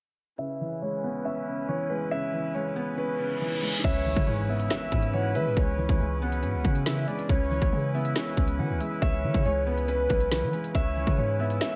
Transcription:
0.38 C#3 C#4 E4 B4 E5
0.61 E3
0.82 G#3 C#5
1.04 B3
1.25 C#4 E5
1.47 C#3
1.68 E3 C#5
1.90 G#3 B4
2.11 C#3 E5
2.34 E3
2.54 G#3 C#5
2.76 B3
2.97 C#4 B4, reverse cymbal
3.19 C#3
3.41 E3
3.63 G#3
3.84 C#2 C#3 C#4 E4 B4 C#5 E5, kick, closed hi-hat, crash, impact
4.06 E3
4.16 C#3, kick
4.27 G#2 G#3 C#5
4.49 B3 E5
4.60 closed hi-hat
4.70 C#4 E5, snare, closed hi-hat
4.92 G#2 C#3, kick, closed hi-hat
5.02 closed hi-hat
5.13 E3 C#5 F#5
5.35 E3 G#3 B4 E5, closed hi-hat
5.46 G#2
5.57 C#2 C#3 C#5, kick, closed hi-hat
5.78 E3
5.89 C#2, kick
6.00 C#2 G#3
6.22 B3 F#5
6.32 closed hi-hat
6.43 G#2 C#4, closed hi-hat
6.54 C#2
6.64 C#3, kick, closed hi-hat
6.75 closed hi-hat
6.86 E3 E5, snare, closed hi-hat
7.08 G#3 D5, closed hi-hat
7.19 closed hi-hat
7.29 C#2 C#3 E4 B4 C#5, kick, closed hi-hat
7.51 E3
7.62 C#2, kick
7.73 C#3 G#3
7.94 B3 E5
8.05 closed hi-hat
8.16 C#4, snare, closed hi-hat
8.37 C#2 C#3, kick, closed hi-hat
8.48 closed hi-hat
8.59 E3 F#5
8.70 C#2
8.80 G#3 E5, closed hi-hat
9.02 C#2 C#3 C#5 E5, kick, closed hi-hat
9.24 E3
9.34 C#3, kick
9.45 C#2 G#3 C#5
9.67 B3 B4
9.78 closed hi-hat
9.88 C#4 B4, closed hi-hat
10.10 B1 C#3, kick, closed hi-hat
10.20 closed hi-hat
10.32 E3, snare, closed hi-hat
10.42 E3
10.53 G#3, closed hi-hat
10.64 closed hi-hat
10.75 C#2 C#3 C#5 E5, kick, closed hi-hat
10.97 E3
11.07 C#3, kick
11.17 G#2 G#3 C#5
11.39 B3 E5
11.50 closed hi-hat
11.61 C#4 E5, snare, closed hi-hat

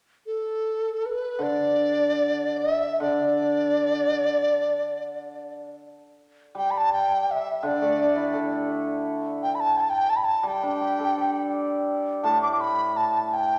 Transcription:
0.26 A4
1.06 B4
1.39 D3 D5
2.58 D#5
2.75 E5
3.00 D3 D5
6.55 G3 G5
6.71 B5
6.78 A5
6.93 G5
7.31 E5
7.61 D3 E5
7.67 D5
7.81 A3
7.99 D4
8.16 E4
8.34 A4
9.43 G5
9.55 B5
9.60 A5
9.77 G5 A5
9.90 G5
10.10 A5
10.16 B5
10.24 A5
10.43 G3
10.48 G5
10.63 D4
10.81 G4
10.99 A4
11.18 D5
12.23 A2 A5
12.42 D6
12.52 D6
12.61 B5
12.97 A5
13.33 G5

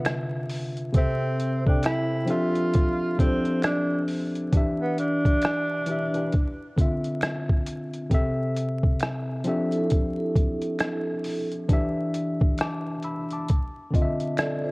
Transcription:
Already playing: C3 D3 B3 F4 E5
0.05 finger snap, cross-stick, closed hi-hat
0.49 open hi-hat
0.77 closed hi-hat
0.93 C3 C4 A4, kick, closed hi-hat
0.98 E5
1.40 closed hi-hat
1.65 C3 C4 D4 A4, kick
1.70 G5
1.83 E4, finger snap, cross-stick, closed hi-hat
2.26 F3 C4 D4 G4 A4, closed hi-hat
2.30 F4 E5
2.56 closed hi-hat
2.74 kick, closed hi-hat
3.19 F3 C4 D4 G4 A4, kick, closed hi-hat
3.23 C5
3.45 closed hi-hat
3.63 D4, finger snap, cross-stick, closed hi-hat
4.08 open hi-hat
4.35 closed hi-hat
4.52 E3 D4 G4, kick, closed hi-hat
4.57 E5
4.81 B3
4.98 D4, closed hi-hat
5.25 kick, closed hi-hat
5.41 finger snap, cross-stick, closed hi-hat
5.86 E3 D4 G4, closed hi-hat
5.91 E5
6.13 E3 D4 G4, closed hi-hat
6.18 B4
6.32 kick, closed hi-hat
6.76 D3 C4 F4, kick, closed hi-hat
6.81 E5
7.04 closed hi-hat
7.21 finger snap, cross-stick, closed hi-hat
7.49 kick
7.66 closed hi-hat
7.94 closed hi-hat
8.10 C3 C4 A4, kick, closed hi-hat
8.14 E5
8.56 closed hi-hat
8.83 kick
9.00 finger snap, cross-stick, closed hi-hat
9.44 F3 C4 D4 G4 A4, closed hi-hat
9.49 E5
9.72 E4 A4, closed hi-hat
9.90 G4 C5, kick, closed hi-hat
10.17 E4 A4
10.36 kick, closed hi-hat
10.62 closed hi-hat
10.79 finger snap, cross-stick, closed hi-hat
11.24 open hi-hat
11.52 closed hi-hat
11.68 E3 D4 G4, kick, closed hi-hat
11.73 E5
12.14 closed hi-hat
12.41 kick
12.58 D6, finger snap, cross-stick, closed hi-hat
12.62 A5
13.02 B5 E6, closed hi-hat
13.30 A5 D6, closed hi-hat
13.48 kick, closed hi-hat
13.91 D3 C4 F4, kick
13.95 D#5, closed hi-hat
14.02 E5
14.20 closed hi-hat
14.37 A4 D5, finger snap, cross-stick, closed hi-hat
14.64 F4 C5

